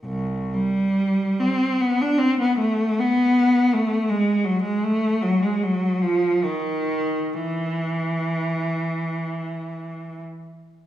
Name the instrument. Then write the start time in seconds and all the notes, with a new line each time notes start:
cello
0.05 C2
0.54 G3
1.40 C4
1.81 B3
2.01 D4
2.19 C4
2.40 B3
2.59 A3
3.00 B3
3.73 A3
4.09 G#3
4.45 F#3
4.63 G#3
4.84 A3
5.23 F#3
5.42 G#3
5.63 F#3
6.02 F3
6.44 D#3
7.34 E3